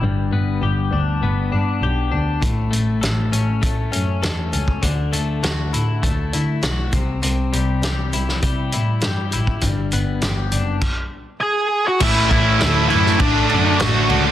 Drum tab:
CC |----------------|----------------|----------------|----------------|
HH |----------------|x-x-x-x-x-x-x-x-|x-x-x-x-x-x-x-x-|x-x-x-x-x-x-x-x-|
SD |----------------|----o-------o---|----o-------o---|----o--o----o---|
BD |----------------|o-------o------o|o-------o-----o-|--------o------o|

CC |--------x-------|x-x-x-x-x-x-x-x-|
HH |x-x-x-x---------|----------------|
SD |----o-----------|----o--o----o---|
BD |o-------o-------|o-o-----o-------|